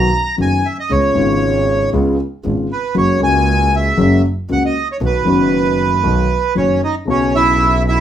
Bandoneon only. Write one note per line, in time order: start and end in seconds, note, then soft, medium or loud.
0.00 0.36 A#5 medium
0.42 0.67 G#5 medium
0.66 0.77 E5 medium
0.80 0.92 D#5 medium
0.91 1.90 C#5 medium
2.72 2.95 B4 medium
2.98 3.21 C#5 medium
3.23 3.75 G#5 medium
3.76 4.22 E5 medium
4.52 4.63 F#5 medium
4.65 4.88 D#5 medium
4.92 4.97 C#5 medium
5.05 6.54 B4 medium
6.57 6.81 C#4 soft
6.57 6.81 C#5 medium
6.84 6.95 D#4 soft
6.84 6.95 D#5 medium
7.10 7.33 C#4 medium
7.10 7.36 C#5 medium
7.35 7.83 E4 soft
7.35 7.82 E5 medium
7.88 8.00 E4 medium
7.88 8.00 E5 medium